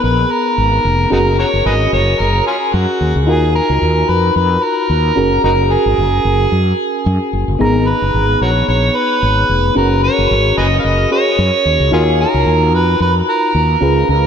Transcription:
Already playing: fm electric piano B3 D#4 G#4 A#4
0.04 fretless electric bass A#1, harmonica B4
0.31 harmonica A#4
0.58 fretless electric bass G#1
0.85 fretless electric bass F1
1.10 fretless electric bass F#1, fm electric piano C#4 F#4 G#4 A#4, harmonica D#4 F#4 A#4
1.39 harmonica F#4 A#4 C#5
1.54 fretless electric bass F#1
1.66 fretless electric bass G#1, harmonica G#4 B4 D#5
1.93 fretless electric bass F#1, harmonica C#5
2.20 fretless electric bass F#1, harmonica A#4
2.47 harmonica C#4 F4 G#4
2.74 fretless electric bass F#2, harmonica F#4
3.01 fretless electric bass D#2
3.16 fretless electric bass C#2
3.27 fretless electric bass D#2, fm electric piano D#4 F4 F#4 A#4, harmonica G#4
3.55 harmonica A#4
3.70 fretless electric bass C#2
3.82 fretless electric bass D#2
4.09 fretless electric bass F2, harmonica B4
4.36 fretless electric bass F2, harmonica B4
4.64 harmonica A#4
4.90 fretless electric bass D#2
5.16 fretless electric bass F#1, fm electric piano C#4 F#4 G#4 A#4
5.44 fretless electric bass F#1, harmonica D#4 F#4 A#4
5.72 harmonica G#4
5.86 fretless electric bass G#1
5.98 fretless electric bass F#1
6.25 fretless electric bass F#1
6.52 fretless electric bass F#2
7.06 fretless electric bass F#2
7.33 fretless electric bass F#1
7.48 fretless electric bass F#1
7.59 fretless electric bass G#1, fm electric piano B3 D#4 G#4 A#5, harmonica A#4
7.88 harmonica B4
8.02 fretless electric bass F#1
8.14 fretless electric bass G#1
8.41 fretless electric bass A#1, harmonica F#4 A#4 C#5
8.68 fretless electric bass A#1, harmonica C#5
8.96 harmonica B4
9.23 fretless electric bass G#1
9.49 fretless electric bass F1
9.75 fretless electric bass F#1, fm electric piano C#4 F#4 G#4 A#4, harmonica A#4
10.04 harmonica C#5
10.19 fretless electric bass F#1
10.31 fretless electric bass G#1
10.58 fretless electric bass F#1, harmonica G#4 B4 D#5
10.79 harmonica F5
10.84 fretless electric bass F#1, harmonica D#5
11.11 fm electric piano C#4 F#4 G#4 C#5, harmonica C#5
11.39 fretless electric bass F#2
11.65 fretless electric bass D#2
11.80 fretless electric bass C#2
11.91 fretless electric bass D#2, harmonica C#4 F4 G#4, fm electric piano D#4 F4 F#4 A#4
12.20 harmonica A#4
12.34 fretless electric bass C#2
12.46 fretless electric bass D#2
12.73 fretless electric bass F2, harmonica B4
13.00 fretless electric bass F2, harmonica B4
13.29 harmonica A#4
13.55 fretless electric bass D#2
13.81 fretless electric bass C#2, fm electric piano C#4 F4 G#4 B4
14.09 fretless electric bass C#2, harmonica A#4

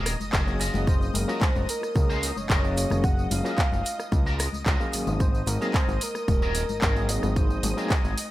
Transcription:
Already playing: analog synth bass D#1, clean electric guitar C4 F#4 G#4 A#4, analog synth pad D#5 D#6
0.06 cross-stick, open hi-hat, tambourine, maracas
0.20 analog synth bass F#1, tambourine, high conga, maracas
0.32 analog synth bass F#1, clean electric guitar C4 F#4 G#4 A#4, kick, clap, tambourine, maracas
0.46 tine electric piano F#3 A#3 C#4 G#4 F5, tambourine, high bongo, maracas
0.59 clean electric guitar C#4 F4 F#4 A#4, open hi-hat, tambourine, maracas
0.74 analog synth bass F#1, tambourine, high conga, low conga, maracas
0.87 soft synth lead C5, kick, tambourine, maracas
1.01 muted clean electric guitar stroke, tambourine, maracas
1.14 analog synth bass F#1, soft synth lead A#4, open hi-hat, tambourine, high bongo, high conga, maracas
1.27 tine electric piano F#3 A#3 C#4 F4 G#4, clean electric guitar C#4 F4 F#4 A#4, tambourine, maracas
1.41 soft synth lead C5, kick, clap, tambourine, maracas
1.55 analog synth bass F#1, tambourine, high conga, maracas
1.69 soft synth lead A#4, open hi-hat, tambourine, maracas
1.81 cross-stick, tambourine, high bongo, maracas
1.94 analog synth bass C#2, soft synth lead A#4, kick, tambourine, high conga, maracas
2.09 clean electric guitar C#4 F4 F#4 C5, tambourine, maracas
2.22 open hi-hat, tambourine, maracas
2.36 analog synth bass F#1, soft synth lead C#5, tambourine, high bongo, high conga, maracas
2.49 analog synth bass F#1, clean electric guitar C#4 F4 F#4 A#4, kick, clap, tambourine, maracas
2.62 tine electric piano F#3 A#3 C#4 G#4 F5, tambourine, maracas
2.77 soft synth lead C#5, open hi-hat, tambourine, maracas
2.90 analog synth bass F#1, cross-stick, tambourine, high bongo, high conga, low conga, maracas
3.03 soft synth lead F#5, muted clean electric guitar stroke, kick, tambourine, maracas
3.17 muted clean electric guitar stroke, tambourine, maracas
3.30 analog synth bass F#1, soft synth lead F5, open hi-hat, tambourine, high bongo, high conga, maracas
3.44 tine electric piano F#3 A#3 C#4 F4 G#4, clean electric guitar C#4 F4 F#4 A#4, tambourine, maracas
3.58 kick, clap, tambourine, maracas
3.72 analog synth bass F#1, tambourine, high conga, maracas
3.85 open hi-hat, tambourine, maracas
3.98 cross-stick, tambourine, high bongo, maracas
4.12 analog synth bass C#2, kick, tambourine, high conga, maracas
4.25 clean electric guitar C#4 F4 F#4 A#4, tambourine, maracas
4.39 cross-stick, open hi-hat, tambourine, maracas
4.53 analog synth bass C#2, tambourine, high conga, maracas
4.65 analog synth bass C#2, clean electric guitar C#4 F4 F#4 A#4, kick, clap, tambourine, maracas
4.79 tine electric piano F#3 A#3 C#4 G#4 F5, tambourine, high bongo, maracas
4.92 analog synth bass G#1, open hi-hat, tambourine, maracas
5.07 analog synth bass G#1, tambourine, high bongo, high conga, low conga, maracas
5.19 soft synth lead C5, analog synth pad D#5 D#6, muted clean electric guitar stroke, kick, tambourine, maracas
5.34 muted clean electric guitar stroke, tambourine, maracas
5.46 analog synth bass G#1, soft synth lead A#4, open hi-hat, tambourine, high bongo, high conga, maracas
5.60 tine electric piano F#3 A#3 C4 D#4 G#4, clean electric guitar C4 F#4 G#4 A#4, tambourine, maracas
5.74 soft synth lead C5, kick, clap, tambourine, maracas
5.88 analog synth bass G#1, tambourine, high conga, maracas
6.01 soft synth lead A#4, open hi-hat, tambourine, maracas
6.15 cross-stick, tambourine, high bongo, maracas
6.28 analog synth bass D#1, soft synth lead A#4, kick, tambourine, high conga, maracas
6.42 clean electric guitar C4 F#4 G#4 A#4, tambourine, maracas
6.55 open hi-hat, tambourine, maracas
6.69 analog synth bass G#1, tambourine, high bongo, high conga, maracas
6.82 analog synth bass G#1, clean electric guitar C4 F#4 G#4 A#4, kick, clap, tambourine, maracas
6.95 tine electric piano F#3 A#3 C4 D#4 G#4, tambourine, maracas
7.09 soft synth lead D#5, open hi-hat, tambourine, maracas
7.23 analog synth bass G#1, cross-stick, tambourine, high bongo, high conga, low conga, maracas
7.36 soft synth lead C5, muted clean electric guitar stroke, kick, tambourine, maracas
7.50 muted clean electric guitar stroke, tambourine, maracas
7.63 analog synth bass G#1, open hi-hat, tambourine, high bongo, high conga, maracas
7.76 tine electric piano F#3 A#3 C4 D#4 G#4, clean electric guitar C4 F#4 G#4 A#4, tambourine, maracas
7.90 kick, clap, tambourine, maracas
8.04 analog synth bass G#1, tambourine, high conga, maracas
8.18 open hi-hat, tambourine, maracas

